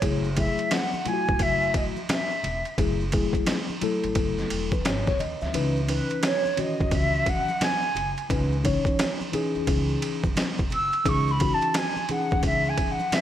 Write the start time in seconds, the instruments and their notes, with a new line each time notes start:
0.02 upright bass F#1, tine electric piano F#3 A3 E4 G#4, kick, ride, maracas
0.24 maracas
0.36 tine electric piano F#3 A3 E4 G#4, flute E5, kick, ride, maracas
0.58 ride, maracas
0.71 flute F#5, snare, hi-hat pedal, ride, maracas
0.94 high conga, maracas
1.05 tine electric piano F#3 A3 E4 F4, flute G#5, ride, low conga, maracas
1.14 tine electric piano F#4
1.28 upright bass A1, kick, maracas
1.39 upright bass F#1, flute E5, kick, ride, high conga, maracas
1.63 maracas
1.74 flute D#5, kick, ride, high conga, maracas
1.97 high conga, maracas
2.09 flute E5, snare, hi-hat pedal, ride, low conga, maracas
2.31 maracas
2.44 upright bass E1, ride, low conga, maracas
2.65 ride, maracas
2.78 upright bass F#1, tine electric piano F#3 A3 E4 G#4, kick, ride, maracas
3.01 maracas
3.12 tine electric piano F#3 A3 E4 G#4, kick, ride, maracas
3.33 kick, ride, maracas
3.46 snare, hi-hat pedal, ride, maracas
3.70 high conga, maracas
3.81 tine electric piano F#3 A3 E4 A4, ride, low conga, maracas
4.04 upright bass A1, ride, maracas
4.15 upright bass F#1, kick, ride, high conga, maracas
4.38 snare, maracas
4.50 upright bass E1, ride, high conga, maracas
4.72 tine electric piano B4, kick, high conga, maracas
4.85 upright bass G#1, tine electric piano C#5, snare, hi-hat pedal, ride, low conga, maracas
5.07 tine electric piano C#5, kick, snare, high conga, maracas
5.19 upright bass D#2, tine electric piano D#5, ride, low conga, maracas
5.41 upright bass D2, tine electric piano E5, snare, maracas
5.53 upright bass C#2, tine electric piano E3 C#4 D#4 B4, ride, maracas
5.76 maracas
5.88 tine electric piano E3 C#4 D#4 B4, flute B4, ride, maracas
6.10 ride, maracas
6.23 flute C#5, snare, hi-hat pedal, ride, maracas
6.46 high conga, maracas
6.57 tine electric piano D#3 C#4 F#4, flute D#5, ride, low conga, maracas
6.63 tine electric piano E3
6.80 upright bass E2, kick, maracas
6.91 upright bass C#2, flute E5, kick, ride, high conga, maracas
7.15 maracas
7.26 flute F#5, kick, ride, high conga, maracas
7.49 high conga, maracas
7.61 flute G#5, snare, hi-hat pedal, ride, low conga, maracas
7.83 maracas
7.95 upright bass F#1, ride, low conga, maracas
8.17 ride, maracas
8.29 upright bass C#2, tine electric piano E3 C#4 D#4 B4, kick, ride, maracas
8.53 maracas
8.63 tine electric piano E3 C#4 D#4 C#5, kick, ride, maracas
8.85 kick, ride, maracas
8.99 snare, hi-hat pedal, ride, maracas
9.21 high conga, maracas
9.32 tine electric piano E3 C#4 D#4 G#4, ride, low conga, maracas
9.55 upright bass E2, maracas
9.67 upright bass C#2, kick, ride, high conga, maracas
9.89 maracas
10.02 ride, high conga, maracas
10.24 kick, high conga, maracas
10.36 snare, hi-hat pedal, ride, low conga, maracas
10.58 kick, maracas
10.70 upright bass F#1, flute E6, ride, low conga, maracas
10.92 ride, maracas
11.05 upright bass C#2, tine electric piano E3 C#4 D#4 G#4, flute C#6, kick, ride, maracas
11.28 flute B5, maracas
11.39 tine electric piano E3 C#4 D#4 F#4, kick, ride, maracas
11.54 flute A5
11.61 ride, maracas
11.74 flute G#5, snare, hi-hat pedal, ride, maracas
11.97 high conga, maracas
12.09 tine electric piano E3 C#4 D#4 G#4, flute F#5, ride, low conga, maracas
12.31 upright bass E2, kick, maracas
12.43 upright bass C#2, flute E5, kick, ride, high conga, maracas
12.66 flute G#5, maracas
12.78 kick, ride, high conga, maracas
12.91 flute F#5
12.99 high conga, maracas
13.12 flute E5, snare, hi-hat pedal, ride, low conga, maracas